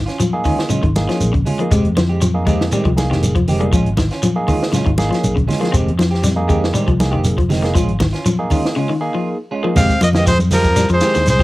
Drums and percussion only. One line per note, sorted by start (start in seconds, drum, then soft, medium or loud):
0.07 snare soft
0.07 closed hi-hat soft
0.20 closed hi-hat medium
0.20 high conga medium
0.20 shekere medium
0.44 kick medium
0.44 open hi-hat medium
0.44 low conga medium
0.44 shekere soft
0.59 snare medium
0.70 closed hi-hat medium
0.70 high conga medium
0.70 shekere medium
0.83 kick medium
0.83 closed hi-hat soft
0.95 snare soft
0.95 closed hi-hat medium
0.95 high conga medium
0.95 shekere soft
1.09 snare soft
1.09 closed hi-hat soft
1.21 closed hi-hat medium
1.21 high conga medium
1.21 shekere medium
1.34 kick medium
1.34 closed hi-hat soft
1.46 open hi-hat medium
1.46 low conga medium
1.46 shekere soft
1.60 closed hi-hat soft
1.71 kick medium
1.71 closed hi-hat medium
1.71 shekere medium
1.85 closed hi-hat soft
1.97 snare medium
1.97 closed hi-hat soft
1.97 high conga medium
1.97 low conga medium
1.97 shekere soft
2.21 closed hi-hat medium
2.21 high conga medium
2.21 shekere medium
2.46 kick medium
2.46 closed hi-hat medium
2.46 low conga medium
2.46 shekere soft
2.61 snare medium
2.71 closed hi-hat medium
2.71 shekere medium
2.85 kick medium
2.85 closed hi-hat soft
2.97 snare soft
2.97 closed hi-hat medium
2.97 high conga loud
2.97 shekere soft
3.12 snare soft
3.23 closed hi-hat medium
3.23 high conga medium
3.23 shekere medium
3.35 kick medium
3.35 closed hi-hat soft
3.35 high conga medium
3.47 open hi-hat medium
3.47 low conga medium
3.47 shekere soft
3.61 closed hi-hat soft
3.72 kick medium
3.72 closed hi-hat medium
3.72 shekere medium
3.86 closed hi-hat soft
3.97 kick medium
3.97 snare medium
3.97 closed hi-hat medium
3.97 high conga medium
3.97 low conga medium
3.97 shekere soft
4.11 snare soft
4.11 closed hi-hat soft
4.23 closed hi-hat medium
4.23 high conga medium
4.23 shekere medium
4.48 kick medium
4.48 open hi-hat medium
4.48 low conga medium
4.48 shekere soft
4.63 snare medium
4.73 snare soft
4.73 closed hi-hat medium
4.73 high conga medium
4.73 shekere medium
4.86 kick medium
4.86 closed hi-hat soft
4.98 snare soft
4.98 closed hi-hat medium
4.98 high conga medium
4.98 shekere soft
5.12 snare soft
5.12 closed hi-hat soft
5.24 closed hi-hat medium
5.24 high conga medium
5.24 shekere medium
5.37 kick medium
5.37 closed hi-hat soft
5.49 snare soft
5.49 open hi-hat medium
5.49 low conga medium
5.49 shekere soft
5.63 snare soft
5.63 closed hi-hat soft
5.74 kick medium
5.74 closed hi-hat medium
5.74 shekere medium
5.88 closed hi-hat soft
5.99 snare medium
5.99 closed hi-hat soft
5.99 high conga medium
5.99 shekere soft
6.14 snare soft
6.23 snare soft
6.23 closed hi-hat medium
6.23 high conga medium
6.23 shekere medium
6.49 kick medium
6.49 closed hi-hat soft
6.49 low conga medium
6.49 shekere soft
6.64 snare medium
6.75 closed hi-hat medium
6.75 shekere medium
6.88 kick medium
6.88 closed hi-hat soft
7.00 snare soft
7.00 closed hi-hat soft
7.00 high conga loud
7.00 shekere soft
7.24 closed hi-hat medium
7.24 high conga medium
7.24 shekere medium
7.38 kick medium
7.38 closed hi-hat soft
7.38 high conga medium
7.50 snare soft
7.50 open hi-hat medium
7.50 low conga medium
7.50 shekere soft
7.63 snare soft
7.63 closed hi-hat soft
7.75 kick medium
7.75 closed hi-hat medium
7.75 shekere medium
7.88 closed hi-hat soft
8.00 kick medium
8.00 snare medium
8.00 closed hi-hat medium
8.00 high conga medium
8.00 low conga medium
8.00 shekere soft
8.13 snare soft
8.13 closed hi-hat soft
8.26 closed hi-hat medium
8.26 high conga medium
8.26 shekere medium
8.50 kick medium
8.50 open hi-hat medium
8.50 low conga medium
8.50 shekere soft
8.65 snare medium
9.76 kick loud
9.76 snare soft
9.76 closed hi-hat medium
9.76 low conga medium
9.76 shekere medium
9.89 kick medium
9.89 shekere soft
10.01 closed hi-hat medium
10.01 high conga medium
10.01 shekere medium
10.13 snare medium
10.13 low conga medium
10.13 shekere soft
10.27 kick medium
10.27 closed hi-hat medium
10.27 shekere loud
10.39 closed hi-hat soft
10.39 high conga medium
10.39 shekere soft
10.51 open hi-hat medium
10.51 high conga medium
10.51 low conga medium
10.51 shekere medium
10.64 kick medium
10.64 shekere soft
10.76 snare soft
10.76 closed hi-hat medium
10.76 shekere medium
10.89 closed hi-hat soft
10.89 shekere soft
11.00 snare medium
11.00 closed hi-hat medium
11.00 shekere medium
11.14 snare soft
11.14 closed hi-hat soft
11.14 shekere soft
11.26 snare soft
11.26 closed hi-hat medium
11.26 high conga medium
11.26 shekere medium
11.39 kick medium
11.39 snare soft